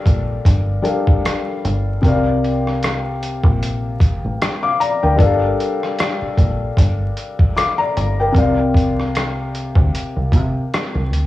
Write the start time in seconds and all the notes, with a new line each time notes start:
Already playing: G3 D4 A4 A#4 F5
0.06 A#1, kick, closed hi-hat
0.45 G1, kick, closed hi-hat
0.82 G3 D4 A4 A#4 F5, closed hi-hat
1.07 kick
1.25 cross-stick, closed hi-hat
1.65 G1, closed hi-hat
2.02 C2 C3 C4 A#4, kick, closed hi-hat
2.06 D5 F5
2.44 closed hi-hat
2.67 cross-stick
2.83 cross-stick, closed hi-hat
3.23 closed hi-hat
3.44 A#1, kick
3.63 closed hi-hat
4.00 kick, closed hi-hat
4.24 A1
4.42 cross-stick, closed hi-hat
4.63 F5 D6
4.80 D5 A#5, closed hi-hat
5.03 D2 A#4 G5
5.16 G1 G3 D4 A4, kick
5.20 A#4 F5, closed hi-hat
5.60 closed hi-hat
5.83 cross-stick
5.99 cross-stick, closed hi-hat
6.22 muted fingered electric bass stroke
6.38 A#1, kick, closed hi-hat
6.77 G1, kick, closed hi-hat
7.17 closed hi-hat
7.39 kick
7.57 F5 D6, cross-stick, closed hi-hat
7.78 D5 A#5
7.97 G1, closed hi-hat
8.20 A#4 G5
8.32 C2 C3 C4 A#4, kick
8.36 D5 F5, closed hi-hat
8.74 kick, closed hi-hat
8.99 cross-stick
9.15 cross-stick, closed hi-hat
9.55 closed hi-hat
9.75 D2, kick
9.95 closed hi-hat
10.16 C2
10.32 C3, kick, closed hi-hat
10.74 cross-stick, closed hi-hat
10.95 C2
11.12 D2, closed hi-hat